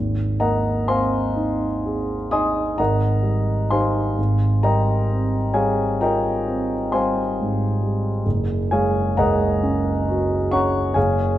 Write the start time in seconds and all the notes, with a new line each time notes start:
Already playing: G#1
0.40 A#3 A#4 D#5 F#5 A#5
0.88 C4 C5 F5 G#5 C6
1.36 D#4
1.86 G#4
2.31 D#4 D#5 G#5 C6 D#6
2.78 G#1 A#4 D#5 F#5 A#5
3.23 G3
3.70 D#4 G4 C5 F5 G#5 C6
4.18 G#1
4.63 G3 A#4 D#5 G5 A#5
5.10 C4
5.54 G3 G#4 C#5 F5 G#5
6.01 F4 A#4 D#5 G5 A#5
6.47 C4
6.92 G3 C5 F5 G#5 C6
7.40 G#2
7.83 G3
8.26 F#1
8.71 G#3 G#4 C#5 F5 G#5
9.17 C#2 A#4 D#5 F#5 A#5
9.63 C#4
10.09 F#4
10.51 C#4 C#5 F#5 A#5 C#6
10.94 F#1 G#4 C#5 F5 G#5